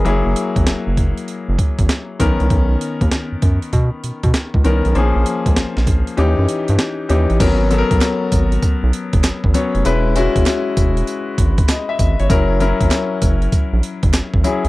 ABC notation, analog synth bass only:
X:1
M:4/4
L:1/16
Q:"Swing 16ths" 1/4=98
K:Blyd
V:1 name="Analog synth bass" clef=bass
F,,, F,,, z G,,, F,,, F,,,2 z2 F,,, z G,,, z2 B,,, ^B,,, | B,,,2 z D,, z F,, F,, z B,, z B,, B,, z C,, ^B,,, =B,,, | A,,, A,,, z C,, A,,, A,,,2 z D,, F,, z =G,, z2 D,, =A,,, | [K:G#m] G,,,3 B,,, z2 G,,,2 z B,,, z F,,, G,,, G,,, z ^E,,, |
E,,,3 F,,, z2 E,,,2 z2 G,,,2 z2 G,,, =G,,, | F,,,3 G,,, z2 F,,,2 z A,,, z F,,, G,,, G,,, z ^B,,, |]